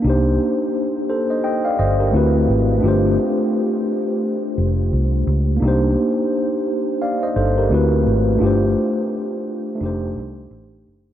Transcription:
0.00 A#3 D4
0.04 C2 D#4 G4
0.10 C5
1.09 A4 C5
1.30 C5 D#5
1.44 D#5 G5
1.65 D5 F5
1.79 G1 C5 D#5
2.00 G4 A#4
2.11 D2 A3 C4 E4
2.15 F#4 B4
2.49 G#1
2.77 A3 D4
2.83 G1 F4 G4
2.88 C5
4.58 F1
4.92 C2
5.27 C#2
5.57 A#3 D4
5.62 C2 D#4 G4
5.68 C5
7.02 D5 F5
7.23 C5 D#5
7.36 G1 A4 C5
7.58 G4 A#4
7.69 D2 A3 C4 E4 F#4
7.75 B4
8.06 G#1
8.35 A3 D4
8.41 G1 F4 G4
8.46 C5
9.75 A3 D4
9.81 F1 D#4 G4
9.86 C5
10.16 C2
10.51 A1
10.87 F#1

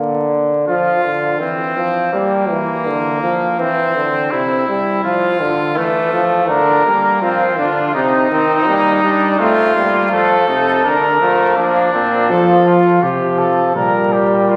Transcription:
Already playing: D3
0.68 F3 F4
1.05 D3
1.41 E3 C4
1.77 F3
2.13 G3 A#3
2.50 E3
2.86 D3
3.23 F3
3.59 E3 C4
3.96 D3
4.31 C3 E4
4.68 G3
5.04 F3 F4
5.41 D3
5.77 E3 A3
6.13 F3
6.49 D3 D4 A#4
6.86 G3 A#3
7.21 F3 C4 F4
7.58 D3 D4
7.94 C3 D#4
8.31 D#3 C4
8.67 G3 A#3
9.03 G3 D4
9.39 A3 C4 F4
9.75 G3 A#3
10.12 F3 A3 A4
10.49 C3 D#4
10.84 D3 D4 A#4
11.21 F3 A3
11.57 F3 A#3 D4
11.94 A#2 C4
12.30 F3 A4
12.66 F4
13.03 C3 F3 G4
13.38 A4
13.75 A#2 G3 A#4
14.13 G4
14.49 F4

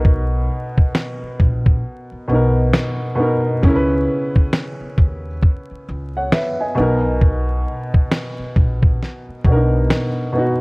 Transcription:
Already playing: B1 B2 B3 D#4 A#4
0.05 kick
0.78 kick
0.95 snare
1.23 muted upright bass stroke
1.40 A#1, kick
1.66 kick
2.12 muted upright bass stroke
2.28 B1 B2 B3
2.32 D#4 A#4
2.74 snare
3.15 B2 B3
3.20 D#4 A#4
3.62 C#2 C#3 C#4, kick
3.67 E4 A#4
3.76 B4
4.36 kick
4.53 snare
4.81 muted upright bass stroke
4.98 D#2, kick
5.42 kick
5.71 muted upright bass stroke
5.88 C#2
6.17 C#5 F#5
6.32 B4 E5, snare
6.60 D#5 G#5
6.75 B1 B2 B3
6.79 D#4 A#4
7.21 kick
7.94 kick
8.12 snare
8.39 muted upright bass stroke
8.56 A#1, kick
8.83 kick
9.03 snare
9.29 muted upright bass stroke
9.45 B1 B2 B3, kick
9.50 D4 A#4
9.56 D#4
9.90 snare
10.32 B2 B3
10.37 D#4 F#4

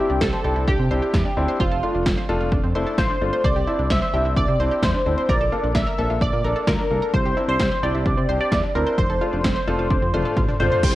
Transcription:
Already playing: G4
0.00 C4 D4 E4
0.10 C2 D4
0.21 C2 C4 A4, kick, snare
0.33 C5
0.44 C2 C4 D4 E4 G4
0.56 C2 E4
0.67 C2 D4 G4, kick
0.79 C3 C4
0.91 C2 C4 D4 E4 C5
1.02 G4
1.13 E2 E4, kick, snare
1.25 D4
1.37 D2 C4 D4 E4
1.48 C5
1.60 F1 F4 C5, kick
1.71 F1 A4
1.83 A3 D4 F4
1.95 F1 D4
2.06 F1 C4, kick, snare
2.18 C5
2.29 F1 A3 D4 F4 A4
2.41 F1 F4
2.52 F1 D4, kick
2.64 F2 C4
2.75 F1 A3 D4 E4 C5
2.87 A4
2.98 A1 F4 C5, kick, snare
3.10 D4
3.21 G1 A3 C4 D4 F4
3.33 C5
3.44 C2 C5 D5, kick
3.56 C2 G4
3.67 C4 D4 E4
3.79 C2 D4
3.90 C2 C4 E5, kick, snare
4.02 C5
4.14 C2 C4 D4 E4 G4
4.25 C2 E4
4.37 C2 D4 D5, kick
4.48 C3 C4
4.60 C2 C4 D4 E4 C5
4.71 G4
4.83 E2 E4 C5, kick, snare
4.94 D4
5.06 D2 C4 D4 E4
5.18 C5
5.29 A#1 A#4 D5, kick
5.41 A#1 A4
5.52 A#3 D4 F4 A4
5.64 A#1 D4
5.75 A#1 A#3 E5, kick, snare
5.87 A#4
5.98 A#1 A#3 D4 A4
6.10 A#1 F4
6.21 A#1 D4 D5, kick
6.33 A#2 A#3
6.44 A#1 A#3 D4 A4 A#4
6.56 A4
6.67 D2 F4 A#4, kick, snare
6.79 D4
6.90 C2 A#3 D4 A4
7.02 A#4
7.14 C2 C5, kick
7.25 C2 G4
7.37 C4 D4 E4
7.48 C2 D4 C5
7.60 C2 C4, kick, snare
7.72 C5
7.83 C2 C4 D4 E4 G4 D5
7.94 C2 E4
8.06 C2 D4, kick
8.17 C3 C4
8.29 C2 C4 D4 G4 C5
8.41 G4 D5
8.52 E2 E4, kick, snare
8.64 D4
8.75 D2 C4 D4 E4 A#4
8.87 C5
8.98 F1 C5, kick
9.10 F1 A4
9.21 A3 D4 F4
9.33 F1 D4
9.44 F1 C4, kick, snare
9.56 C5
9.67 F1 A3 D4 F4 A4
9.79 F1 F4
9.90 F1 D4, kick, high tom
10.02 F2 C4
10.14 F1 A3 D4 F4 C5, mid tom
10.25 A4
10.37 A1 F4, kick, mid tom
10.48 D4, mid tom
10.60 G1 A3 C4 D4 F4 C5, floor tom
10.71 C5, floor tom
10.83 C2 C3 C4 E4 G4 G5, kick, closed hi-hat, crash, downlifter

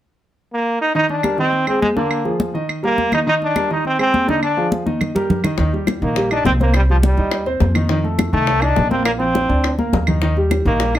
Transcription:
0.53 A#3
0.81 D#4
0.95 D#3 D#4 D#5, high conga
1.09 D4, high conga
1.23 G3 G4 A#4, high conga, claves
1.38 D#3 C4 D#4 D#5, high conga
1.53 high conga
1.67 G#3 C4 G#4 C5, high conga, claves
1.82 G#3, high conga
1.96 D3 A#3 D4 D5, high conga
2.11 high conga, claves
2.25 F3 F4 G#4, high conga
2.40 high conga
2.54 D#3 D#4 D#5, high conga
2.69 high conga, claves
2.83 G3 A#3 G4 A#4, high conga
2.98 high conga
3.12 D#3 D#4 D#5, high conga, claves
3.27 D#3 D#4 D#5, high conga
3.42 D4, high conga
3.56 G3 G4 A#4, high conga, claves
3.70 D#3 D#4 D#5, high conga
3.85 C4, high conga
3.99 G#3 C4 G#4 C5, high conga, claves
4.14 high conga
4.28 D3 D4 D#4 D5, high conga
4.43 D4, high conga, claves
4.57 F3 F4 G#4, high conga
4.72 high conga
4.86 D#3 D#4 D#5, high conga
5.01 low conga, claves
5.15 G3 G4 A#4, low conga
5.30 low conga
5.44 D#3 D#4 D#5, low conga, claves
5.58 D#2 D#3 D#4, high bongo, high conga
5.73 G3 G4, high conga
5.87 high bongo, high conga, claves
6.02 A#1 D#3 A#3 D#4, high bongo, high conga
6.16 G3 G4, high bongo, high conga
6.31 D4 D#4 D#5, high bongo, high conga, claves
6.45 C2 C4, high bongo, low bongo, high conga
6.60 A#3 C4 C5, high bongo, high conga
6.74 G3, high bongo, high conga, claves
6.90 F3 G3 G4, high conga
7.03 G3, high bongo, high conga
7.17 D#2 D#4 D#5, high bongo, high conga
7.32 high bongo, high conga, claves
7.46 C4 C5, high bongo, high conga
7.60 F2, high bongo, low bongo, high conga
7.75 D#3 D#4, high bongo, high conga, claves
7.89 D#3 D#4, high bongo, high conga
8.04 A3 A4, high conga
8.19 high bongo, high conga, claves
8.32 C2 D#3 A3 D#4, high bongo, high conga
8.47 A3 A4, high bongo, high conga
8.62 D4 D#4 D#5, high bongo, high conga, claves
8.76 A#1, high bongo, low bongo, high conga
8.90 A#3 C4 A#4, high bongo, high conga
9.05 A#3, high bongo, high conga, claves
9.19 F3 C4 F4, high conga
9.35 high bongo, high conga
9.49 D2 D4 D5, high bongo, high conga
9.64 high bongo, high conga, claves
9.79 A#3 A#4, high bongo, high conga
9.93 D#2, high bongo, low bongo
10.07 D#3 D#4, high bongo, low conga, claves
10.22 D#3 D#4, high bongo, high conga
10.37 G3 G4, high conga
10.51 high bongo, high conga, claves
10.65 A#1 D#3 A#3 D#4, high bongo, high conga
10.80 G3 G4, high bongo, high conga
10.95 D#4 D#5, high bongo, high conga, claves

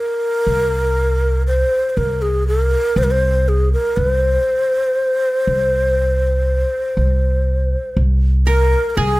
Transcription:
Already playing: A#4
0.47 C2
1.47 C5
1.89 C5
1.97 C2 A#4
2.22 G#4
2.47 A#4
2.96 C2 C5
3.03 A#4
3.11 C5
3.48 G#4
3.73 A#4
3.97 C2 B4
4.11 C5
5.47 C2
6.97 C2
7.97 C2
8.47 A#4
8.90 A#4
8.96 C2 G#4

